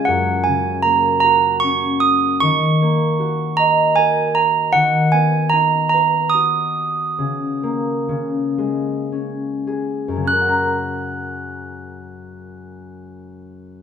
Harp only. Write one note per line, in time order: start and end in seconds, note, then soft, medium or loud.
0.00 0.10 C#3 medium
0.00 0.10 G#3 medium
0.00 1.63 C#4 medium
0.00 0.14 F4 soft
0.00 0.39 A#4 soft
0.08 2.47 F#2 medium
0.47 2.47 C#3 soft
0.85 2.82 A#3 soft
1.24 3.19 F#4 soft
1.64 4.54 C#4 soft
2.42 4.73 D#3 medium
2.82 5.20 A#3 soft
3.20 5.63 F#4 medium
3.59 5.37 D#5 soft
3.98 5.20 A#4 medium
4.74 7.24 D#3 medium
5.14 7.69 B3 medium
5.53 8.24 D#4 soft
5.93 7.69 B4 soft
6.35 8.78 F#4 soft
7.19 8.08 C#3 medium
7.63 10.85 A#3 soft
8.09 10.15 C#3 medium
8.58 10.32 G#3 soft
9.12 10.24 C#4 soft
9.67 11.95 G#4 soft
10.08 13.82 F#2 soft
10.16 13.82 C#3 soft
10.24 13.82 C#4 soft
10.32 13.82 A#4 soft
10.40 13.82 F#5 soft
10.48 13.82 A#5 soft